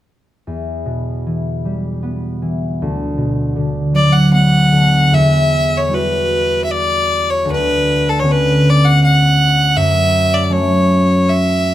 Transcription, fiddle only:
0, 0, Header, 1, 2, 480
1, 0, Start_track
1, 0, Tempo, 770218
1, 304, Time_signature, 3, 2, 24, 8
1, 2695, Tempo, 790514
1, 4135, Tempo, 760456
1, 7321, End_track
2, 0, Start_track
2, 0, Title_t, "Fiddle"
2, 0, Program_c, 0, 110
2, 2467, Note_on_c, 0, 74, 74
2, 2572, Note_on_c, 0, 78, 72
2, 2581, Note_off_c, 0, 74, 0
2, 2695, Note_off_c, 0, 78, 0
2, 2701, Note_on_c, 0, 78, 83
2, 3191, Note_on_c, 0, 76, 77
2, 3200, Note_off_c, 0, 78, 0
2, 3574, Note_on_c, 0, 73, 67
2, 3583, Note_off_c, 0, 76, 0
2, 3676, Note_on_c, 0, 71, 73
2, 3686, Note_off_c, 0, 73, 0
2, 4101, Note_off_c, 0, 71, 0
2, 4104, Note_on_c, 0, 76, 51
2, 4145, Note_on_c, 0, 74, 78
2, 4155, Note_off_c, 0, 76, 0
2, 4516, Note_on_c, 0, 73, 69
2, 4526, Note_off_c, 0, 74, 0
2, 4629, Note_off_c, 0, 73, 0
2, 4653, Note_on_c, 0, 71, 83
2, 5013, Note_on_c, 0, 69, 71
2, 5022, Note_off_c, 0, 71, 0
2, 5080, Note_on_c, 0, 73, 66
2, 5089, Note_off_c, 0, 69, 0
2, 5156, Note_on_c, 0, 71, 81
2, 5165, Note_off_c, 0, 73, 0
2, 5398, Note_on_c, 0, 74, 82
2, 5408, Note_off_c, 0, 71, 0
2, 5493, Note_on_c, 0, 78, 81
2, 5503, Note_off_c, 0, 74, 0
2, 5601, Note_off_c, 0, 78, 0
2, 5613, Note_on_c, 0, 78, 87
2, 6075, Note_on_c, 0, 76, 94
2, 6085, Note_off_c, 0, 78, 0
2, 6435, Note_on_c, 0, 74, 77
2, 6444, Note_off_c, 0, 76, 0
2, 6493, Note_off_c, 0, 74, 0
2, 6493, Note_on_c, 0, 74, 57
2, 6549, Note_on_c, 0, 73, 78
2, 6559, Note_off_c, 0, 74, 0
2, 7034, Note_on_c, 0, 76, 82
2, 7043, Note_off_c, 0, 73, 0
2, 7321, Note_off_c, 0, 76, 0
2, 7321, End_track
0, 0, End_of_file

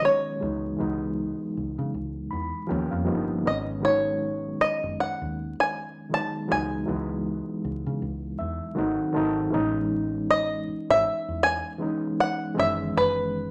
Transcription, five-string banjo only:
0, 0, Header, 1, 2, 480
1, 0, Start_track
1, 0, Key_signature, 4, "minor"
1, 0, Tempo, 759494
1, 257, Time_signature, 4, 2, 24, 8
1, 8537, End_track
2, 0, Start_track
2, 0, Title_t, "Five-string banjo"
2, 0, Program_c, 0, 105
2, 31, Note_on_c, 0, 73, 71
2, 1919, Note_off_c, 0, 73, 0
2, 2195, Note_on_c, 0, 75, 79
2, 2257, Note_off_c, 0, 75, 0
2, 2431, Note_on_c, 0, 73, 82
2, 2915, Note_on_c, 0, 75, 83
2, 2919, Note_off_c, 0, 73, 0
2, 3153, Note_off_c, 0, 75, 0
2, 3162, Note_on_c, 0, 78, 84
2, 3504, Note_off_c, 0, 78, 0
2, 3540, Note_on_c, 0, 80, 95
2, 3877, Note_off_c, 0, 80, 0
2, 3880, Note_on_c, 0, 81, 99
2, 4093, Note_off_c, 0, 81, 0
2, 4118, Note_on_c, 0, 80, 85
2, 5763, Note_off_c, 0, 80, 0
2, 6513, Note_on_c, 0, 75, 94
2, 6889, Note_off_c, 0, 75, 0
2, 6892, Note_on_c, 0, 76, 106
2, 7225, Note_on_c, 0, 80, 122
2, 7235, Note_off_c, 0, 76, 0
2, 7710, Note_off_c, 0, 80, 0
2, 7713, Note_on_c, 0, 78, 99
2, 7929, Note_off_c, 0, 78, 0
2, 7960, Note_on_c, 0, 76, 104
2, 8172, Note_off_c, 0, 76, 0
2, 8200, Note_on_c, 0, 71, 85
2, 8537, Note_off_c, 0, 71, 0
2, 8537, End_track
0, 0, End_of_file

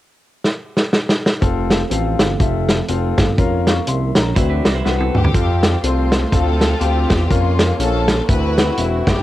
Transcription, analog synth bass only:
0, 0, Header, 1, 2, 480
1, 0, Start_track
1, 0, Key_signature, -1, "major"
1, 0, Tempo, 490196
1, 1391, Time_signature, 4, 2, 24, 8
1, 9034, End_track
2, 0, Start_track
2, 0, Title_t, "Analog synth bass"
2, 0, Program_c, 0, 38
2, 1391, Note_on_c, 0, 29, 100
2, 1799, Note_off_c, 0, 29, 0
2, 1865, Note_on_c, 0, 33, 95
2, 2108, Note_off_c, 0, 33, 0
2, 2145, Note_on_c, 0, 31, 80
2, 2317, Note_off_c, 0, 31, 0
2, 2349, Note_on_c, 0, 29, 94
2, 2758, Note_off_c, 0, 29, 0
2, 2828, Note_on_c, 0, 29, 90
2, 3069, Note_off_c, 0, 29, 0
2, 3117, Note_on_c, 0, 31, 83
2, 3313, Note_on_c, 0, 29, 93
2, 3328, Note_off_c, 0, 31, 0
2, 3720, Note_off_c, 0, 29, 0
2, 3794, Note_on_c, 0, 36, 91
2, 4033, Note_off_c, 0, 36, 0
2, 4077, Note_on_c, 0, 34, 87
2, 4243, Note_off_c, 0, 34, 0
2, 4275, Note_on_c, 0, 38, 106
2, 4513, Note_off_c, 0, 38, 0
2, 4553, Note_on_c, 0, 36, 89
2, 4722, Note_off_c, 0, 36, 0
2, 4754, Note_on_c, 0, 36, 86
2, 4993, Note_off_c, 0, 36, 0
2, 5040, Note_on_c, 0, 38, 72
2, 5205, Note_off_c, 0, 38, 0
2, 5234, Note_on_c, 0, 41, 97
2, 5641, Note_off_c, 0, 41, 0
2, 5712, Note_on_c, 0, 36, 92
2, 6120, Note_off_c, 0, 36, 0
2, 6189, Note_on_c, 0, 38, 105
2, 6599, Note_off_c, 0, 38, 0
2, 6666, Note_on_c, 0, 38, 92
2, 6909, Note_off_c, 0, 38, 0
2, 6958, Note_on_c, 0, 40, 96
2, 7125, Note_off_c, 0, 40, 0
2, 7156, Note_on_c, 0, 41, 102
2, 7563, Note_off_c, 0, 41, 0
2, 7628, Note_on_c, 0, 34, 101
2, 8039, Note_off_c, 0, 34, 0
2, 8119, Note_on_c, 0, 38, 101
2, 8525, Note_off_c, 0, 38, 0
2, 8595, Note_on_c, 0, 28, 92
2, 8834, Note_off_c, 0, 28, 0
2, 8884, Note_on_c, 0, 30, 81
2, 9034, Note_off_c, 0, 30, 0
2, 9034, End_track
0, 0, End_of_file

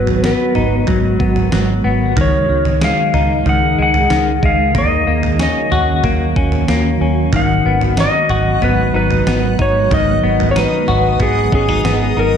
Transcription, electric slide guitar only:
0, 0, Header, 1, 2, 480
1, 0, Start_track
1, 0, Tempo, 645161
1, 1613, Time_signature, 4, 2, 24, 8
1, 9204, End_track
2, 0, Start_track
2, 0, Title_t, "Electric slide guitar"
2, 0, Program_c, 0, 29
2, 0, Note_on_c, 0, 71, 75
2, 180, Note_off_c, 0, 71, 0
2, 189, Note_on_c, 0, 71, 69
2, 631, Note_off_c, 0, 71, 0
2, 1644, Note_on_c, 0, 73, 80
2, 2079, Note_off_c, 0, 73, 0
2, 2116, Note_on_c, 0, 77, 82
2, 2595, Note_off_c, 0, 77, 0
2, 2598, Note_on_c, 0, 78, 90
2, 2809, Note_off_c, 0, 78, 0
2, 2846, Note_on_c, 0, 78, 83
2, 3311, Note_off_c, 0, 78, 0
2, 3314, Note_on_c, 0, 77, 79
2, 3551, Note_off_c, 0, 77, 0
2, 3559, Note_on_c, 0, 75, 79
2, 4029, Note_off_c, 0, 75, 0
2, 4038, Note_on_c, 0, 75, 62
2, 4476, Note_off_c, 0, 75, 0
2, 5476, Note_on_c, 0, 78, 86
2, 5954, Note_on_c, 0, 75, 83
2, 5959, Note_off_c, 0, 78, 0
2, 6430, Note_on_c, 0, 71, 81
2, 6438, Note_off_c, 0, 75, 0
2, 6659, Note_off_c, 0, 71, 0
2, 6668, Note_on_c, 0, 71, 81
2, 7155, Note_off_c, 0, 71, 0
2, 7155, Note_on_c, 0, 73, 81
2, 7391, Note_off_c, 0, 73, 0
2, 7394, Note_on_c, 0, 75, 80
2, 7818, Note_off_c, 0, 75, 0
2, 7821, Note_on_c, 0, 73, 59
2, 7863, Note_off_c, 0, 73, 0
2, 7876, Note_on_c, 0, 71, 81
2, 8350, Note_on_c, 0, 68, 74
2, 8359, Note_off_c, 0, 71, 0
2, 8584, Note_off_c, 0, 68, 0
2, 8593, Note_on_c, 0, 68, 76
2, 9072, Note_on_c, 0, 70, 73
2, 9077, Note_off_c, 0, 68, 0
2, 9204, Note_off_c, 0, 70, 0
2, 9204, End_track
0, 0, End_of_file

